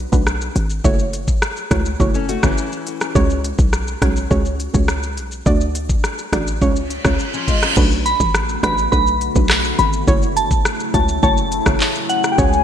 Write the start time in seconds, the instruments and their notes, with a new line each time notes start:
0.12 808-style bass B1, synth pluck A3 D4 F#4 B4, kick, shaker
0.27 cross-stick, shaker
0.41 shaker
0.56 808-style bass G#1, closed hi-hat, shaker
0.70 shaker
0.84 808-style bass F#1, synth pluck A3 E4 F#4 C#5, kick, shaker
0.99 shaker
1.13 closed hi-hat, shaker
1.28 kick, shaker
1.42 cross-stick, shaker
1.57 shaker
1.71 808-style bass C#2, synth pluck A3 E4 F#4 C#5, kick, cross-stick, closed hi-hat, shaker
1.86 shaker
2.00 808-style bass F#1, synth pluck A3 E4 F#4 C#5, kick, shaker
2.14 nylon-string guitar C#4 A4, shaker
2.29 nylon-string guitar A3 F#4, closed hi-hat, shaker
2.43 808-style bass F#1, nylon-string guitar E3 C#4, synth pluck A3 E4 F#4 C#5, kick, cross-stick, shaker
2.58 shaker
2.72 shaker
2.87 closed hi-hat, shaker
3.01 cross-stick, shaker
3.15 808-style bass C#2, synth pluck G#3 C#4 F#4 C#5, kick, shaker
3.30 shaker
3.44 closed hi-hat, shaker
3.59 808-style bass B1, kick, shaker
3.73 cross-stick, shaker
3.87 shaker
4.02 808-style bass B1, synth pluck G#3 C#4 F#4 C#5, kick, cross-stick, closed hi-hat, shaker
4.16 shaker
4.30 808-style bass C#2, synth pluck G#3 C#4 F#4 C#5, kick, shaker
4.45 shaker
4.60 closed hi-hat, shaker
4.74 808-style bass C#2, synth pluck G#3 C#4 F#4 C#5, kick, shaker
4.88 cross-stick, shaker
5.03 shaker
5.17 808-style bass B1, closed hi-hat, shaker
5.32 shaker
5.46 808-style bass D2, synth pluck A3 D4 F#4 D5, kick, shaker
5.61 shaker
5.75 closed hi-hat, shaker
5.89 kick, shaker
6.04 cross-stick, shaker
6.18 shaker
6.32 808-style bass A1, synth pluck A3 D4 F#4 D5, kick, cross-stick, closed hi-hat, shaker
6.47 shaker
6.61 808-style bass C#2, synth pluck G#3 C#4 F4 C#5, kick, reverse cymbal, shaker
6.76 shaker
6.90 closed hi-hat, shaker
7.04 808-style bass C#2, synth pluck G#3 C#4 F4 C#5, kick, cross-stick, shaker
7.19 shaker
7.33 nylon-string guitar F3 C#4, shaker
7.48 nylon-string guitar G#3 F4, kick, closed hi-hat, shaker
7.62 nylon-string guitar F3 C#4, cross-stick, shaker
7.76 808-style bass B1, ambient pad D3 A3 B3 F#4, synth pluck A3 D4 F#4 B4, kick, crash, shaker
7.91 shaker
8.06 synth bell B5, closed hi-hat, shaker
8.20 808-style bass A1, kick, shaker
8.34 cross-stick, shaker
8.49 shaker
8.63 808-style bass A1, synth pluck A3 D4 F#4 B4, synth bell B5, kick, cross-stick, closed hi-hat, shaker
8.78 shaker
8.92 808-style bass B1, synth pluck A3 D4 F#4 B4, synth bell B5, kick, shaker
9.07 shaker
9.21 closed hi-hat, shaker
9.35 808-style bass B1, synth pluck A3 D4 F#4 B4, kick, shaker
9.50 cross-stick, clap, shaker
9.64 shaker
9.79 808-style bass G#1, synth bell B5, closed hi-hat, shaker
9.93 shaker
10.07 808-style bass F#1, ambient pad C#3 F#3 A3 E4, synth pluck A3 E4 F#4 C#5, kick, shaker
10.22 shaker
10.36 synth bell A5, closed hi-hat, shaker
10.51 kick, shaker
10.65 cross-stick, shaker
10.80 shaker
10.94 808-style bass C#2, synth pluck A3 E4 F#4 C#5, synth bell A5, kick, closed hi-hat, shaker
11.08 shaker
11.23 808-style bass F#1, synth pluck A3 E4 F#4 C#5, synth bell A5, kick, shaker
11.37 shaker
11.52 closed hi-hat, shaker
11.66 808-style bass F#1, synth pluck A3 E4 F#4 C#5, kick, cross-stick, shaker
11.80 clap, shaker
11.95 shaker
12.09 synth bell F#5, closed hi-hat, shaker
12.24 cross-stick, shaker
12.31 soft synth lead G5
12.38 808-style bass C#2, synth pluck G#3 C#4 F#4 C#5, ambient pad G#3 F#4, soft synth lead G#5, kick, shaker
12.53 shaker